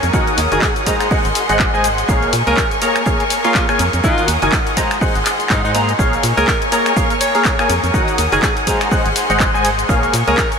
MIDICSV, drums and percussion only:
0, 0, Header, 1, 2, 480
1, 0, Start_track
1, 0, Key_signature, -5, "minor"
1, 0, Tempo, 487805
1, 132, Time_signature, 4, 2, 24, 8
1, 10419, End_track
2, 0, Start_track
2, 0, Title_t, "Drums"
2, 30, Note_on_c, 9, 42, 70
2, 35, Note_on_c, 9, 82, 35
2, 128, Note_off_c, 9, 42, 0
2, 129, Note_on_c, 9, 42, 87
2, 132, Note_on_c, 9, 36, 127
2, 134, Note_off_c, 9, 82, 0
2, 137, Note_on_c, 9, 82, 43
2, 227, Note_off_c, 9, 42, 0
2, 231, Note_off_c, 9, 36, 0
2, 235, Note_off_c, 9, 82, 0
2, 270, Note_on_c, 9, 42, 39
2, 272, Note_off_c, 9, 42, 0
2, 272, Note_on_c, 9, 42, 42
2, 276, Note_on_c, 9, 82, 22
2, 370, Note_off_c, 9, 42, 0
2, 371, Note_on_c, 9, 46, 116
2, 371, Note_on_c, 9, 51, 77
2, 372, Note_on_c, 9, 42, 71
2, 374, Note_off_c, 9, 82, 0
2, 377, Note_on_c, 9, 82, 77
2, 470, Note_off_c, 9, 42, 0
2, 470, Note_off_c, 9, 46, 0
2, 470, Note_off_c, 9, 51, 0
2, 476, Note_off_c, 9, 82, 0
2, 510, Note_on_c, 9, 42, 67
2, 516, Note_on_c, 9, 82, 32
2, 607, Note_on_c, 9, 39, 127
2, 608, Note_off_c, 9, 42, 0
2, 612, Note_on_c, 9, 36, 125
2, 614, Note_off_c, 9, 82, 0
2, 614, Note_on_c, 9, 38, 127
2, 614, Note_on_c, 9, 42, 92
2, 617, Note_on_c, 9, 82, 44
2, 706, Note_off_c, 9, 39, 0
2, 711, Note_off_c, 9, 36, 0
2, 712, Note_off_c, 9, 42, 0
2, 713, Note_off_c, 9, 38, 0
2, 715, Note_off_c, 9, 82, 0
2, 746, Note_on_c, 9, 42, 44
2, 749, Note_off_c, 9, 42, 0
2, 749, Note_on_c, 9, 42, 53
2, 755, Note_on_c, 9, 82, 22
2, 848, Note_off_c, 9, 42, 0
2, 851, Note_on_c, 9, 46, 109
2, 851, Note_on_c, 9, 51, 78
2, 852, Note_on_c, 9, 36, 64
2, 853, Note_off_c, 9, 82, 0
2, 856, Note_on_c, 9, 82, 76
2, 857, Note_on_c, 9, 42, 70
2, 949, Note_off_c, 9, 46, 0
2, 949, Note_off_c, 9, 51, 0
2, 951, Note_off_c, 9, 36, 0
2, 955, Note_off_c, 9, 82, 0
2, 956, Note_off_c, 9, 42, 0
2, 989, Note_on_c, 9, 26, 66
2, 989, Note_on_c, 9, 42, 66
2, 990, Note_on_c, 9, 38, 53
2, 994, Note_on_c, 9, 82, 35
2, 1087, Note_off_c, 9, 26, 0
2, 1087, Note_off_c, 9, 42, 0
2, 1087, Note_on_c, 9, 46, 85
2, 1088, Note_off_c, 9, 38, 0
2, 1092, Note_on_c, 9, 36, 126
2, 1093, Note_off_c, 9, 82, 0
2, 1097, Note_on_c, 9, 82, 42
2, 1185, Note_off_c, 9, 46, 0
2, 1191, Note_off_c, 9, 36, 0
2, 1196, Note_off_c, 9, 82, 0
2, 1229, Note_on_c, 9, 42, 53
2, 1235, Note_on_c, 9, 82, 22
2, 1328, Note_off_c, 9, 42, 0
2, 1330, Note_on_c, 9, 42, 69
2, 1331, Note_on_c, 9, 46, 117
2, 1331, Note_on_c, 9, 51, 80
2, 1334, Note_off_c, 9, 82, 0
2, 1337, Note_on_c, 9, 82, 81
2, 1428, Note_off_c, 9, 42, 0
2, 1429, Note_off_c, 9, 46, 0
2, 1429, Note_off_c, 9, 51, 0
2, 1435, Note_off_c, 9, 82, 0
2, 1470, Note_on_c, 9, 42, 71
2, 1476, Note_on_c, 9, 82, 31
2, 1568, Note_off_c, 9, 42, 0
2, 1568, Note_on_c, 9, 39, 124
2, 1572, Note_on_c, 9, 36, 127
2, 1574, Note_off_c, 9, 82, 0
2, 1577, Note_on_c, 9, 82, 43
2, 1666, Note_off_c, 9, 39, 0
2, 1671, Note_off_c, 9, 36, 0
2, 1676, Note_off_c, 9, 82, 0
2, 1717, Note_on_c, 9, 82, 22
2, 1808, Note_on_c, 9, 42, 77
2, 1812, Note_on_c, 9, 46, 112
2, 1812, Note_on_c, 9, 51, 76
2, 1815, Note_off_c, 9, 82, 0
2, 1818, Note_on_c, 9, 82, 79
2, 1907, Note_off_c, 9, 42, 0
2, 1910, Note_off_c, 9, 46, 0
2, 1910, Note_off_c, 9, 51, 0
2, 1916, Note_off_c, 9, 82, 0
2, 1951, Note_on_c, 9, 42, 71
2, 1956, Note_on_c, 9, 82, 34
2, 2049, Note_off_c, 9, 42, 0
2, 2052, Note_on_c, 9, 36, 127
2, 2055, Note_off_c, 9, 82, 0
2, 2055, Note_on_c, 9, 42, 93
2, 2058, Note_on_c, 9, 82, 43
2, 2151, Note_off_c, 9, 36, 0
2, 2153, Note_off_c, 9, 42, 0
2, 2157, Note_off_c, 9, 82, 0
2, 2190, Note_on_c, 9, 42, 35
2, 2196, Note_on_c, 9, 82, 22
2, 2288, Note_off_c, 9, 42, 0
2, 2291, Note_on_c, 9, 46, 116
2, 2291, Note_on_c, 9, 51, 75
2, 2292, Note_on_c, 9, 42, 72
2, 2294, Note_off_c, 9, 82, 0
2, 2297, Note_on_c, 9, 82, 80
2, 2389, Note_off_c, 9, 46, 0
2, 2389, Note_off_c, 9, 51, 0
2, 2390, Note_off_c, 9, 42, 0
2, 2395, Note_off_c, 9, 82, 0
2, 2427, Note_on_c, 9, 38, 41
2, 2431, Note_on_c, 9, 42, 65
2, 2436, Note_on_c, 9, 82, 33
2, 2526, Note_off_c, 9, 38, 0
2, 2527, Note_on_c, 9, 38, 110
2, 2528, Note_on_c, 9, 39, 127
2, 2529, Note_off_c, 9, 42, 0
2, 2533, Note_on_c, 9, 36, 121
2, 2533, Note_on_c, 9, 42, 88
2, 2535, Note_off_c, 9, 82, 0
2, 2538, Note_on_c, 9, 82, 44
2, 2625, Note_off_c, 9, 38, 0
2, 2626, Note_off_c, 9, 39, 0
2, 2631, Note_off_c, 9, 36, 0
2, 2632, Note_off_c, 9, 42, 0
2, 2636, Note_off_c, 9, 82, 0
2, 2671, Note_on_c, 9, 42, 49
2, 2676, Note_on_c, 9, 82, 22
2, 2769, Note_off_c, 9, 42, 0
2, 2771, Note_on_c, 9, 46, 106
2, 2771, Note_on_c, 9, 51, 75
2, 2775, Note_off_c, 9, 82, 0
2, 2775, Note_on_c, 9, 42, 78
2, 2777, Note_on_c, 9, 82, 73
2, 2869, Note_off_c, 9, 46, 0
2, 2869, Note_off_c, 9, 51, 0
2, 2873, Note_off_c, 9, 42, 0
2, 2875, Note_off_c, 9, 82, 0
2, 2909, Note_on_c, 9, 26, 69
2, 2909, Note_on_c, 9, 42, 66
2, 2915, Note_on_c, 9, 82, 33
2, 3004, Note_off_c, 9, 42, 0
2, 3004, Note_on_c, 9, 42, 82
2, 3008, Note_off_c, 9, 26, 0
2, 3013, Note_on_c, 9, 36, 127
2, 3014, Note_off_c, 9, 82, 0
2, 3017, Note_on_c, 9, 82, 44
2, 3103, Note_off_c, 9, 42, 0
2, 3111, Note_off_c, 9, 36, 0
2, 3115, Note_off_c, 9, 82, 0
2, 3150, Note_on_c, 9, 42, 52
2, 3156, Note_on_c, 9, 82, 22
2, 3249, Note_off_c, 9, 42, 0
2, 3251, Note_on_c, 9, 46, 120
2, 3251, Note_on_c, 9, 51, 81
2, 3252, Note_on_c, 9, 42, 66
2, 3255, Note_off_c, 9, 82, 0
2, 3257, Note_on_c, 9, 82, 79
2, 3349, Note_off_c, 9, 46, 0
2, 3349, Note_off_c, 9, 51, 0
2, 3351, Note_off_c, 9, 42, 0
2, 3355, Note_off_c, 9, 82, 0
2, 3382, Note_on_c, 9, 38, 59
2, 3390, Note_on_c, 9, 42, 66
2, 3396, Note_on_c, 9, 82, 34
2, 3480, Note_off_c, 9, 38, 0
2, 3485, Note_on_c, 9, 38, 108
2, 3488, Note_on_c, 9, 39, 115
2, 3489, Note_off_c, 9, 42, 0
2, 3493, Note_on_c, 9, 36, 127
2, 3494, Note_off_c, 9, 82, 0
2, 3495, Note_on_c, 9, 42, 83
2, 3498, Note_on_c, 9, 82, 44
2, 3583, Note_off_c, 9, 38, 0
2, 3587, Note_off_c, 9, 39, 0
2, 3591, Note_off_c, 9, 36, 0
2, 3594, Note_off_c, 9, 42, 0
2, 3597, Note_off_c, 9, 82, 0
2, 3630, Note_on_c, 9, 26, 67
2, 3636, Note_on_c, 9, 82, 21
2, 3729, Note_off_c, 9, 26, 0
2, 3731, Note_on_c, 9, 42, 71
2, 3733, Note_on_c, 9, 46, 113
2, 3733, Note_on_c, 9, 51, 83
2, 3735, Note_off_c, 9, 82, 0
2, 3738, Note_on_c, 9, 82, 78
2, 3830, Note_off_c, 9, 42, 0
2, 3831, Note_off_c, 9, 46, 0
2, 3831, Note_off_c, 9, 51, 0
2, 3837, Note_off_c, 9, 82, 0
2, 3871, Note_on_c, 9, 42, 65
2, 3877, Note_on_c, 9, 82, 33
2, 3969, Note_off_c, 9, 42, 0
2, 3969, Note_on_c, 9, 42, 85
2, 3973, Note_on_c, 9, 36, 127
2, 3975, Note_off_c, 9, 82, 0
2, 3978, Note_on_c, 9, 82, 43
2, 4068, Note_off_c, 9, 42, 0
2, 4071, Note_off_c, 9, 36, 0
2, 4076, Note_off_c, 9, 82, 0
2, 4110, Note_on_c, 9, 42, 43
2, 4116, Note_on_c, 9, 82, 21
2, 4209, Note_off_c, 9, 42, 0
2, 4212, Note_on_c, 9, 42, 66
2, 4212, Note_on_c, 9, 46, 114
2, 4212, Note_on_c, 9, 51, 81
2, 4214, Note_off_c, 9, 82, 0
2, 4218, Note_on_c, 9, 82, 75
2, 4310, Note_off_c, 9, 46, 0
2, 4310, Note_off_c, 9, 51, 0
2, 4311, Note_off_c, 9, 42, 0
2, 4316, Note_off_c, 9, 82, 0
2, 4351, Note_on_c, 9, 42, 63
2, 4357, Note_on_c, 9, 82, 34
2, 4448, Note_on_c, 9, 39, 125
2, 4449, Note_off_c, 9, 42, 0
2, 4450, Note_on_c, 9, 42, 85
2, 4453, Note_on_c, 9, 36, 121
2, 4454, Note_on_c, 9, 38, 115
2, 4455, Note_off_c, 9, 82, 0
2, 4458, Note_on_c, 9, 82, 45
2, 4546, Note_off_c, 9, 39, 0
2, 4548, Note_off_c, 9, 42, 0
2, 4551, Note_off_c, 9, 36, 0
2, 4552, Note_off_c, 9, 38, 0
2, 4556, Note_off_c, 9, 82, 0
2, 4590, Note_on_c, 9, 42, 46
2, 4592, Note_off_c, 9, 42, 0
2, 4592, Note_on_c, 9, 42, 47
2, 4598, Note_on_c, 9, 82, 20
2, 4690, Note_off_c, 9, 42, 0
2, 4693, Note_on_c, 9, 36, 62
2, 4693, Note_on_c, 9, 46, 107
2, 4693, Note_on_c, 9, 51, 78
2, 4696, Note_off_c, 9, 82, 0
2, 4698, Note_on_c, 9, 82, 74
2, 4699, Note_on_c, 9, 42, 68
2, 4791, Note_off_c, 9, 46, 0
2, 4791, Note_off_c, 9, 51, 0
2, 4792, Note_off_c, 9, 36, 0
2, 4797, Note_off_c, 9, 42, 0
2, 4797, Note_off_c, 9, 82, 0
2, 4832, Note_on_c, 9, 26, 74
2, 4832, Note_on_c, 9, 42, 64
2, 4833, Note_on_c, 9, 38, 59
2, 4838, Note_on_c, 9, 82, 33
2, 4931, Note_off_c, 9, 26, 0
2, 4931, Note_off_c, 9, 38, 0
2, 4931, Note_off_c, 9, 42, 0
2, 4933, Note_on_c, 9, 36, 127
2, 4935, Note_on_c, 9, 46, 81
2, 4937, Note_off_c, 9, 82, 0
2, 4938, Note_on_c, 9, 82, 44
2, 5032, Note_off_c, 9, 36, 0
2, 5033, Note_off_c, 9, 46, 0
2, 5037, Note_off_c, 9, 82, 0
2, 5071, Note_on_c, 9, 42, 52
2, 5077, Note_on_c, 9, 82, 21
2, 5170, Note_off_c, 9, 42, 0
2, 5170, Note_on_c, 9, 39, 63
2, 5174, Note_on_c, 9, 46, 113
2, 5174, Note_on_c, 9, 51, 85
2, 5175, Note_off_c, 9, 82, 0
2, 5177, Note_on_c, 9, 42, 70
2, 5179, Note_on_c, 9, 82, 79
2, 5268, Note_off_c, 9, 39, 0
2, 5272, Note_off_c, 9, 46, 0
2, 5272, Note_off_c, 9, 51, 0
2, 5276, Note_off_c, 9, 42, 0
2, 5278, Note_off_c, 9, 82, 0
2, 5312, Note_on_c, 9, 42, 65
2, 5318, Note_on_c, 9, 82, 33
2, 5409, Note_on_c, 9, 39, 121
2, 5411, Note_off_c, 9, 42, 0
2, 5413, Note_on_c, 9, 36, 126
2, 5413, Note_on_c, 9, 38, 124
2, 5413, Note_on_c, 9, 42, 84
2, 5416, Note_off_c, 9, 82, 0
2, 5418, Note_on_c, 9, 82, 41
2, 5507, Note_off_c, 9, 39, 0
2, 5511, Note_off_c, 9, 38, 0
2, 5512, Note_off_c, 9, 36, 0
2, 5512, Note_off_c, 9, 42, 0
2, 5517, Note_off_c, 9, 82, 0
2, 5556, Note_on_c, 9, 42, 44
2, 5558, Note_on_c, 9, 82, 21
2, 5651, Note_off_c, 9, 42, 0
2, 5651, Note_on_c, 9, 42, 73
2, 5654, Note_on_c, 9, 46, 118
2, 5654, Note_on_c, 9, 51, 85
2, 5656, Note_off_c, 9, 82, 0
2, 5660, Note_on_c, 9, 82, 77
2, 5749, Note_off_c, 9, 42, 0
2, 5753, Note_off_c, 9, 46, 0
2, 5753, Note_off_c, 9, 51, 0
2, 5758, Note_off_c, 9, 82, 0
2, 5793, Note_on_c, 9, 42, 61
2, 5799, Note_on_c, 9, 82, 34
2, 5892, Note_off_c, 9, 42, 0
2, 5892, Note_on_c, 9, 42, 84
2, 5893, Note_on_c, 9, 36, 121
2, 5898, Note_off_c, 9, 82, 0
2, 5900, Note_on_c, 9, 82, 44
2, 5991, Note_off_c, 9, 42, 0
2, 5992, Note_off_c, 9, 36, 0
2, 5999, Note_off_c, 9, 82, 0
2, 6033, Note_on_c, 9, 42, 35
2, 6039, Note_on_c, 9, 82, 22
2, 6130, Note_off_c, 9, 42, 0
2, 6130, Note_on_c, 9, 42, 69
2, 6135, Note_on_c, 9, 46, 109
2, 6135, Note_on_c, 9, 51, 86
2, 6138, Note_off_c, 9, 82, 0
2, 6140, Note_on_c, 9, 82, 81
2, 6229, Note_off_c, 9, 42, 0
2, 6233, Note_off_c, 9, 46, 0
2, 6233, Note_off_c, 9, 51, 0
2, 6239, Note_off_c, 9, 82, 0
2, 6266, Note_on_c, 9, 38, 38
2, 6273, Note_on_c, 9, 42, 64
2, 6279, Note_on_c, 9, 82, 34
2, 6364, Note_off_c, 9, 38, 0
2, 6370, Note_off_c, 9, 42, 0
2, 6370, Note_on_c, 9, 39, 115
2, 6370, Note_on_c, 9, 42, 92
2, 6371, Note_on_c, 9, 38, 112
2, 6373, Note_on_c, 9, 36, 110
2, 6377, Note_off_c, 9, 82, 0
2, 6380, Note_on_c, 9, 82, 47
2, 6468, Note_off_c, 9, 42, 0
2, 6469, Note_off_c, 9, 38, 0
2, 6469, Note_off_c, 9, 39, 0
2, 6472, Note_off_c, 9, 36, 0
2, 6479, Note_off_c, 9, 82, 0
2, 6512, Note_on_c, 9, 42, 53
2, 6518, Note_on_c, 9, 82, 23
2, 6611, Note_off_c, 9, 42, 0
2, 6613, Note_on_c, 9, 46, 108
2, 6613, Note_on_c, 9, 51, 84
2, 6614, Note_on_c, 9, 42, 61
2, 6617, Note_off_c, 9, 82, 0
2, 6619, Note_on_c, 9, 82, 82
2, 6712, Note_off_c, 9, 42, 0
2, 6712, Note_off_c, 9, 46, 0
2, 6712, Note_off_c, 9, 51, 0
2, 6717, Note_off_c, 9, 82, 0
2, 6752, Note_on_c, 9, 26, 73
2, 6752, Note_on_c, 9, 42, 65
2, 6758, Note_on_c, 9, 82, 35
2, 6850, Note_off_c, 9, 26, 0
2, 6850, Note_off_c, 9, 42, 0
2, 6850, Note_on_c, 9, 42, 95
2, 6853, Note_on_c, 9, 36, 122
2, 6856, Note_off_c, 9, 82, 0
2, 6858, Note_on_c, 9, 82, 45
2, 6948, Note_off_c, 9, 42, 0
2, 6951, Note_off_c, 9, 36, 0
2, 6956, Note_off_c, 9, 82, 0
2, 6990, Note_on_c, 9, 42, 52
2, 6996, Note_on_c, 9, 82, 22
2, 7089, Note_off_c, 9, 42, 0
2, 7092, Note_on_c, 9, 46, 118
2, 7092, Note_on_c, 9, 51, 87
2, 7095, Note_off_c, 9, 82, 0
2, 7095, Note_on_c, 9, 42, 68
2, 7098, Note_on_c, 9, 82, 83
2, 7191, Note_off_c, 9, 46, 0
2, 7191, Note_off_c, 9, 51, 0
2, 7193, Note_off_c, 9, 42, 0
2, 7196, Note_off_c, 9, 82, 0
2, 7231, Note_on_c, 9, 42, 65
2, 7233, Note_on_c, 9, 38, 59
2, 7237, Note_on_c, 9, 82, 32
2, 7325, Note_off_c, 9, 42, 0
2, 7325, Note_on_c, 9, 42, 93
2, 7329, Note_on_c, 9, 39, 112
2, 7331, Note_off_c, 9, 38, 0
2, 7332, Note_on_c, 9, 38, 120
2, 7333, Note_on_c, 9, 36, 120
2, 7335, Note_off_c, 9, 82, 0
2, 7339, Note_on_c, 9, 82, 45
2, 7424, Note_off_c, 9, 42, 0
2, 7427, Note_off_c, 9, 39, 0
2, 7430, Note_off_c, 9, 38, 0
2, 7431, Note_off_c, 9, 36, 0
2, 7437, Note_off_c, 9, 82, 0
2, 7471, Note_on_c, 9, 26, 68
2, 7476, Note_on_c, 9, 82, 23
2, 7569, Note_off_c, 9, 26, 0
2, 7571, Note_on_c, 9, 42, 69
2, 7572, Note_on_c, 9, 46, 111
2, 7572, Note_on_c, 9, 51, 84
2, 7575, Note_off_c, 9, 82, 0
2, 7578, Note_on_c, 9, 82, 77
2, 7670, Note_off_c, 9, 42, 0
2, 7671, Note_off_c, 9, 46, 0
2, 7671, Note_off_c, 9, 51, 0
2, 7677, Note_off_c, 9, 82, 0
2, 7711, Note_on_c, 9, 42, 64
2, 7717, Note_on_c, 9, 82, 35
2, 7809, Note_off_c, 9, 42, 0
2, 7810, Note_on_c, 9, 42, 94
2, 7812, Note_on_c, 9, 36, 113
2, 7815, Note_off_c, 9, 82, 0
2, 7817, Note_on_c, 9, 82, 47
2, 7909, Note_off_c, 9, 42, 0
2, 7910, Note_off_c, 9, 36, 0
2, 7915, Note_off_c, 9, 82, 0
2, 7950, Note_on_c, 9, 42, 36
2, 7952, Note_off_c, 9, 42, 0
2, 7952, Note_on_c, 9, 42, 47
2, 7956, Note_on_c, 9, 82, 24
2, 8051, Note_off_c, 9, 42, 0
2, 8051, Note_on_c, 9, 46, 100
2, 8051, Note_on_c, 9, 51, 82
2, 8054, Note_off_c, 9, 82, 0
2, 8054, Note_on_c, 9, 42, 66
2, 8057, Note_on_c, 9, 82, 79
2, 8150, Note_off_c, 9, 46, 0
2, 8150, Note_off_c, 9, 51, 0
2, 8152, Note_off_c, 9, 42, 0
2, 8156, Note_off_c, 9, 82, 0
2, 8191, Note_on_c, 9, 42, 64
2, 8197, Note_on_c, 9, 82, 36
2, 8288, Note_on_c, 9, 39, 114
2, 8289, Note_off_c, 9, 42, 0
2, 8292, Note_on_c, 9, 36, 112
2, 8293, Note_on_c, 9, 42, 90
2, 8295, Note_off_c, 9, 82, 0
2, 8298, Note_on_c, 9, 82, 47
2, 8304, Note_on_c, 9, 38, 127
2, 8387, Note_off_c, 9, 39, 0
2, 8390, Note_off_c, 9, 36, 0
2, 8392, Note_off_c, 9, 42, 0
2, 8397, Note_off_c, 9, 82, 0
2, 8403, Note_off_c, 9, 38, 0
2, 8430, Note_on_c, 9, 42, 52
2, 8436, Note_on_c, 9, 82, 23
2, 8440, Note_off_c, 9, 42, 0
2, 8440, Note_on_c, 9, 42, 42
2, 8531, Note_off_c, 9, 42, 0
2, 8531, Note_on_c, 9, 36, 58
2, 8531, Note_on_c, 9, 42, 74
2, 8532, Note_on_c, 9, 46, 107
2, 8532, Note_on_c, 9, 51, 81
2, 8534, Note_off_c, 9, 82, 0
2, 8538, Note_on_c, 9, 82, 83
2, 8630, Note_off_c, 9, 36, 0
2, 8630, Note_off_c, 9, 42, 0
2, 8630, Note_off_c, 9, 46, 0
2, 8630, Note_off_c, 9, 51, 0
2, 8636, Note_off_c, 9, 82, 0
2, 8664, Note_on_c, 9, 38, 51
2, 8670, Note_on_c, 9, 26, 66
2, 8670, Note_on_c, 9, 42, 66
2, 8676, Note_on_c, 9, 82, 35
2, 8762, Note_off_c, 9, 38, 0
2, 8767, Note_on_c, 9, 46, 86
2, 8768, Note_off_c, 9, 26, 0
2, 8768, Note_off_c, 9, 42, 0
2, 8772, Note_on_c, 9, 36, 115
2, 8774, Note_off_c, 9, 82, 0
2, 8778, Note_on_c, 9, 82, 48
2, 8865, Note_off_c, 9, 46, 0
2, 8870, Note_off_c, 9, 36, 0
2, 8876, Note_off_c, 9, 82, 0
2, 8911, Note_on_c, 9, 42, 54
2, 8917, Note_on_c, 9, 82, 25
2, 9009, Note_off_c, 9, 42, 0
2, 9009, Note_on_c, 9, 42, 73
2, 9011, Note_on_c, 9, 46, 112
2, 9011, Note_on_c, 9, 51, 88
2, 9015, Note_off_c, 9, 82, 0
2, 9017, Note_on_c, 9, 82, 85
2, 9107, Note_off_c, 9, 42, 0
2, 9110, Note_off_c, 9, 46, 0
2, 9110, Note_off_c, 9, 51, 0
2, 9116, Note_off_c, 9, 82, 0
2, 9151, Note_on_c, 9, 42, 65
2, 9157, Note_on_c, 9, 82, 34
2, 9248, Note_on_c, 9, 39, 111
2, 9249, Note_off_c, 9, 42, 0
2, 9252, Note_on_c, 9, 36, 116
2, 9255, Note_off_c, 9, 82, 0
2, 9258, Note_on_c, 9, 82, 48
2, 9347, Note_off_c, 9, 39, 0
2, 9350, Note_off_c, 9, 36, 0
2, 9357, Note_off_c, 9, 82, 0
2, 9396, Note_on_c, 9, 82, 24
2, 9489, Note_on_c, 9, 42, 67
2, 9492, Note_on_c, 9, 46, 111
2, 9492, Note_on_c, 9, 51, 85
2, 9495, Note_off_c, 9, 82, 0
2, 9498, Note_on_c, 9, 82, 84
2, 9587, Note_off_c, 9, 42, 0
2, 9591, Note_off_c, 9, 46, 0
2, 9591, Note_off_c, 9, 51, 0
2, 9597, Note_off_c, 9, 82, 0
2, 9631, Note_on_c, 9, 42, 66
2, 9637, Note_on_c, 9, 82, 36
2, 9730, Note_off_c, 9, 42, 0
2, 9730, Note_on_c, 9, 42, 92
2, 9732, Note_on_c, 9, 36, 114
2, 9735, Note_off_c, 9, 82, 0
2, 9739, Note_on_c, 9, 82, 48
2, 9829, Note_off_c, 9, 42, 0
2, 9830, Note_off_c, 9, 36, 0
2, 9837, Note_off_c, 9, 82, 0
2, 9871, Note_on_c, 9, 42, 37
2, 9877, Note_on_c, 9, 82, 23
2, 9970, Note_off_c, 9, 42, 0
2, 9973, Note_on_c, 9, 46, 108
2, 9973, Note_on_c, 9, 51, 82
2, 9976, Note_off_c, 9, 82, 0
2, 9976, Note_on_c, 9, 42, 75
2, 9979, Note_on_c, 9, 82, 85
2, 10071, Note_off_c, 9, 46, 0
2, 10071, Note_off_c, 9, 51, 0
2, 10075, Note_off_c, 9, 42, 0
2, 10077, Note_off_c, 9, 82, 0
2, 10111, Note_on_c, 9, 38, 35
2, 10111, Note_on_c, 9, 42, 65
2, 10117, Note_on_c, 9, 82, 35
2, 10207, Note_off_c, 9, 42, 0
2, 10207, Note_on_c, 9, 42, 86
2, 10208, Note_on_c, 9, 39, 122
2, 10210, Note_off_c, 9, 38, 0
2, 10212, Note_on_c, 9, 38, 114
2, 10213, Note_on_c, 9, 36, 110
2, 10215, Note_off_c, 9, 82, 0
2, 10218, Note_on_c, 9, 82, 49
2, 10305, Note_off_c, 9, 42, 0
2, 10307, Note_off_c, 9, 39, 0
2, 10311, Note_off_c, 9, 36, 0
2, 10311, Note_off_c, 9, 38, 0
2, 10317, Note_off_c, 9, 82, 0
2, 10351, Note_on_c, 9, 42, 54
2, 10357, Note_on_c, 9, 82, 24
2, 10419, Note_off_c, 9, 42, 0
2, 10419, Note_off_c, 9, 82, 0
2, 10419, End_track
0, 0, End_of_file